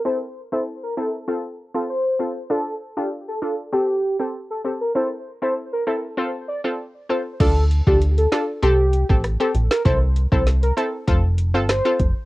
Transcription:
<<
  \new Staff \with { instrumentName = "Soft synth lead" } { \time 4/4 \key d \minor \tempo 4 = 98 c''16 r8 c''16 r16 bes'16 a'16 r4 r16 c''8. r16 | a'8 r16 g'16 r16 a'16 a'16 r16 g'8. r8 a'16 r16 bes'16 | c''16 r8 c''16 r16 bes'16 a'16 r16 c''16 r16 d''16 r8. c''16 r16 | a'8 r16 g'16 r16 a'16 a'16 r16 g'8. r8 a'16 r16 bes'16 |
c''16 r8 c''16 r16 bes'16 a'16 r4 r16 c''8. r16 | }
  \new Staff \with { instrumentName = "Synth pluck" } { \time 4/4 \key d \minor <c' e' a'>16 r8 <c' e' a'>8. <c' e' a'>8 <c' f' a'>8. <c' f' a'>16 r8 <c' f' a'>16 r16 | <d' f' a'>16 r8 <d' f' a'>8. <d' f' a'>8 <c' g' a'>8. <c' g' a'>16 r8 <c' g' a'>16 r16 | <c' e' a'>16 r8 <c' e' a'>8. <c' e' a'>8 <c' f' a'>8. <c' f' a'>16 r8 <c' f' a'>16 r16 | <d' f' a'>8. <d' f' a'>8. <d' f' a'>8 <c' g' a'>16 r8 <c' g' a'>16 r16 <c' g' a'>16 r8 |
<c' e' a'>8. <c' e' a'>8. <c' e' a'>8 <c' f' a'>16 r8 <c' f' a'>16 r16 <c' f' a'>16 r8 | }
  \new Staff \with { instrumentName = "Analog synth bass" } { \clef bass \time 4/4 \key d \minor r1 | r1 | r1 | d,8. d,8. r8 c,8. a,,8 r16 bes,,16 r16 |
c,8. c,8. r8 f,,8. g,,8 r16 f,,16 r16 | }
  \new DrumStaff \with { instrumentName = "Drums" } \drummode { \time 4/4 r4 r4 r4 r4 | r4 r4 r4 r4 | r4 r4 r4 r4 | <cymc hh bd>8 hh16 bd16 hh16 hh16 <hh sn>8 hh8 hh16 bd16 <hh ss>16 hh16 hh16 sn16 |
<hh bd>8 hh16 bd16 <hh sn>16 hh16 hh8 <hh bd>8 hh8 <hh ss sn>16 hh16 <hh bd>8 | }
>>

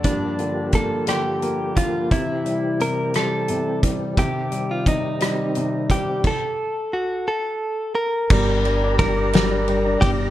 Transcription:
<<
  \new Staff \with { instrumentName = "Clean electric guitar" } { \time 6/8 \key g \minor \tempo 4. = 58 d'4 a'8 g'4 f'8 | e'4 bes'8 a'4 r8 | g'8. f'16 ees'4. g'8 | a'4 fis'8 a'4 bes'8~ |
bes'4 bes'4. g'8 | }
  \new Staff \with { instrumentName = "Tonewheel organ" } { \time 6/8 \key g \minor g'2.~ | g'2.~ | g'2. | r2. |
bes''2. | }
  \new Staff \with { instrumentName = "Tonewheel organ" } { \time 6/8 \key g \minor <f bes>2. | <e c'>2. | <ees c'>2. | r2. |
<g' d''>2. | }
  \new Staff \with { instrumentName = "Grand piano" } { \clef bass \time 6/8 \key g \minor g,8 d8 bes8 d8 bes8 d8 | c8 g8 c8 g8 c8 g8 | c8 g8 c8 g8 c8 g8 | r2. |
g16 d'16 g16 d'16 g16 d'16 g16 d'16 g16 d'16 g16 d'16 | }
  \new Staff \with { instrumentName = "Upright bass" } { \clef bass \time 6/8 \key g \minor r2. | r2. | r2. | r2. |
g,,2~ g,,8 g,,8 | }
  \new DrumStaff \with { instrumentName = "Drums" } \drummode { \time 6/8 <hh bd>8 hh8 <hh bd>8 <hh ss>8 hh8 <hh bd>8 | <hh bd>8 hh8 hh8 <hh ss>8 hh8 <hh bd>8 | <hh bd>8 hh8 <hh bd>8 <hh ss>8 hh8 <hh bd>8 | <cymc bd>4. r4. |
<cymc bd>8 cymr8 <bd cymr>8 <cymr sn>8 cymr8 <bd cymr>8 | }
>>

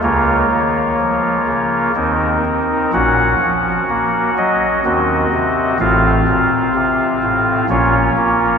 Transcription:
<<
  \new Staff \with { instrumentName = "Pipe organ" } { \time 3/4 \key bes \minor \tempo 4 = 63 << { des''2 bes'4 | ges''4. ees''4. | f''2 des''4 | } \\ { <bes f'>2 <c' ees'>4 | <des' ges'>2 <c' ges'>4 | <c' f'>2 <des' f'>4 | } >> }
  \new Staff \with { instrumentName = "Pipe organ" } { \clef bass \time 3/4 \key bes \minor <des, des>8 ees8 f8 des8 <ees, ees>8 ees'8 | <bes,, bes,>8 f8 bes8 ges8 <ees, ees>8 c8 | <a,, a,>8 bes,8 c8 a,8 <bes,, bes,>8 bes8 | }
>>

